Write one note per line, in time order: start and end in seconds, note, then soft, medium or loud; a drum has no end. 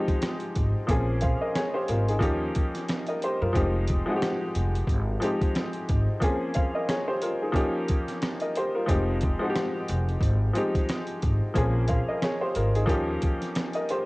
0.00 0.87 F3 medium
0.00 0.90 G#3 medium
0.00 0.89 C4 medium
0.00 0.90 D#4 medium
0.00 0.90 F#4 medium
0.00 0.90 G4 loud
0.08 kick medium
0.08 closed hi-hat medium
0.22 cross-stick medium
0.22 snare loud
0.22 closed hi-hat medium
0.40 closed hi-hat soft
0.55 0.72 G#1 medium
0.55 kick medium
0.55 closed hi-hat medium
0.87 1.32 A#1 loud
0.87 1.20 F3 medium
0.87 1.20 A#3 medium
0.87 1.21 C4 medium
0.87 1.21 C#4 medium
0.87 1.21 G#4 medium
0.87 kick loud
0.87 closed hi-hat loud
1.21 1.40 C5 medium
1.21 1.40 F5 medium
1.21 kick medium
1.21 closed hi-hat medium
1.41 1.55 A#4 medium
1.41 1.55 D#5 medium
1.55 1.74 G#4 medium
1.55 1.74 C#5 medium
1.55 cross-stick medium
1.55 snare loud
1.55 closed hi-hat medium
1.74 1.88 G4 medium
1.74 1.88 C5 medium
1.88 2.16 G#1 loud
1.88 2.07 F4 medium
1.88 2.07 A#4 medium
1.88 closed hi-hat medium
2.08 2.20 D#4 medium
2.08 2.40 G#4 medium
2.08 closed hi-hat soft
2.19 2.49 D#2 loud
2.19 2.48 F3 loud
2.19 2.49 A#3 medium
2.19 2.49 C#4 medium
2.19 2.50 D#4 medium
2.19 2.50 G4 loud
2.19 kick loud
2.19 closed hi-hat medium
2.55 kick medium
2.55 closed hi-hat medium
2.75 snare soft
2.75 closed hi-hat medium
2.89 cross-stick medium
2.89 snare loud
2.89 closed hi-hat medium
3.07 3.22 A#4 medium
3.07 3.22 D#5 medium
3.07 closed hi-hat soft
3.22 3.41 G4 medium
3.22 3.41 C5 medium
3.22 closed hi-hat medium
3.41 3.53 F#2 medium
3.41 3.73 F4 medium
3.41 3.73 A#4 medium
3.53 3.99 F1 medium
3.53 3.86 F3 medium
3.53 3.86 G#3 medium
3.53 3.87 C4 medium
3.53 3.87 D#4 medium
3.53 3.88 G4 medium
3.53 kick loud
3.53 closed hi-hat loud
3.87 kick medium
3.87 closed hi-hat medium
4.06 4.79 F3 medium
4.06 4.80 G#3 medium
4.06 4.80 C4 medium
4.06 4.80 D#4 medium
4.06 4.14 F#4 medium
4.16 4.84 G4 medium
4.22 cross-stick medium
4.22 snare loud
4.22 closed hi-hat medium
4.55 4.83 F1 medium
4.55 closed hi-hat medium
4.75 closed hi-hat medium
4.87 5.15 G#1 medium
4.87 kick loud
4.87 closed hi-hat medium
5.20 5.84 F3 medium
5.20 5.85 G#3 medium
5.20 5.85 C4 medium
5.20 5.86 D#4 medium
5.20 5.86 G4 loud
5.20 closed hi-hat medium
5.41 kick loud
5.41 closed hi-hat medium
5.55 cross-stick medium
5.55 snare loud
5.55 closed hi-hat medium
5.73 closed hi-hat soft
5.89 6.05 G#1 medium
5.89 kick medium
5.89 closed hi-hat medium
6.20 6.53 F3 medium
6.20 6.53 A#3 medium
6.20 6.54 C4 medium
6.20 6.54 C#4 medium
6.20 6.55 G#4 medium
6.20 kick loud
6.20 closed hi-hat loud
6.54 6.74 C5 medium
6.54 6.73 F5 medium
6.54 kick medium
6.54 closed hi-hat medium
6.75 6.88 A#4 medium
6.75 6.88 D#5 medium
6.89 7.07 G#4 medium
6.89 7.07 C#5 medium
6.89 cross-stick loud
6.89 snare loud
6.89 closed hi-hat loud
7.08 7.22 G4 medium
7.08 7.21 C5 medium
7.22 7.41 F4 medium
7.22 7.40 A#4 medium
7.22 closed hi-hat medium
7.42 7.54 D#4 soft
7.42 7.73 G#4 medium
7.52 7.81 F3 loud
7.52 7.82 A#3 medium
7.52 7.82 C#4 medium
7.52 7.83 D#4 medium
7.52 7.83 G4 loud
7.52 kick loud
7.52 closed hi-hat medium
7.88 kick loud
7.88 closed hi-hat medium
8.08 snare soft
8.08 closed hi-hat medium
8.22 cross-stick medium
8.22 snare loud
8.22 closed hi-hat medium
8.40 8.55 A#4 medium
8.40 8.55 D#5 medium
8.40 closed hi-hat soft
8.55 8.75 G4 medium
8.55 8.75 C5 medium
8.55 closed hi-hat medium
8.75 9.07 F4 medium
8.75 9.06 A#4 medium
8.86 9.32 F1 loud
8.86 9.19 F3 medium
8.86 9.20 G#3 medium
8.86 9.20 C4 medium
8.86 9.21 D#4 medium
8.86 9.21 G4 medium
8.86 kick loud
8.86 closed hi-hat loud
9.21 kick medium
9.21 closed hi-hat medium
9.39 10.13 F3 medium
9.39 10.13 G#3 medium
9.39 10.13 C4 medium
9.39 10.14 D#4 medium
9.39 9.48 F#4 medium
9.50 10.18 G4 medium
9.55 cross-stick loud
9.55 snare loud
9.55 closed hi-hat medium
9.88 10.16 F1 medium
9.88 closed hi-hat medium
10.09 closed hi-hat medium
10.21 10.49 G#1 medium
10.21 kick loud
10.21 closed hi-hat medium
10.53 11.18 F3 medium
10.53 11.18 G#3 medium
10.53 11.19 C4 medium
10.53 11.19 D#4 medium
10.53 11.20 G4 medium
10.53 closed hi-hat medium
10.75 kick medium
10.75 closed hi-hat medium
10.89 cross-stick medium
10.89 snare loud
10.89 closed hi-hat medium
11.07 closed hi-hat soft
11.22 11.38 G#1 medium
11.22 kick medium
11.22 closed hi-hat medium
11.54 11.99 A#1 loud
11.54 11.86 F3 medium
11.54 11.87 A#3 medium
11.54 11.87 C4 medium
11.54 11.88 C#4 medium
11.54 11.88 G#4 medium
11.54 kick loud
11.54 closed hi-hat loud
11.88 12.07 C5 medium
11.88 12.07 F5 medium
11.88 kick medium
11.88 closed hi-hat medium
12.08 12.22 A#4 medium
12.08 12.22 D#5 medium
12.22 12.41 G#4 medium
12.22 12.41 C#5 medium
12.22 cross-stick medium
12.22 snare loud
12.22 closed hi-hat medium
12.41 12.55 G4 medium
12.41 12.55 C5 medium
12.55 12.83 G#1 medium
12.55 12.74 F4 medium
12.55 12.74 A#4 medium
12.55 closed hi-hat medium
12.75 12.87 D#4 medium
12.75 13.07 G#4 medium
12.75 closed hi-hat medium
12.86 13.15 D#2 loud
12.86 13.15 F3 loud
12.86 13.15 A#3 medium
12.86 13.16 C#4 medium
12.86 13.16 D#4 medium
12.86 13.17 G4 loud
12.86 kick loud
12.86 closed hi-hat medium
13.22 kick loud
13.22 closed hi-hat medium
13.42 snare soft
13.42 closed hi-hat medium
13.55 cross-stick medium
13.55 snare loud
13.55 closed hi-hat medium
13.73 13.88 A#4 medium
13.73 13.88 D#5 medium
13.73 closed hi-hat soft
13.89 14.06 G4 medium
13.89 14.06 C5 medium
13.89 closed hi-hat medium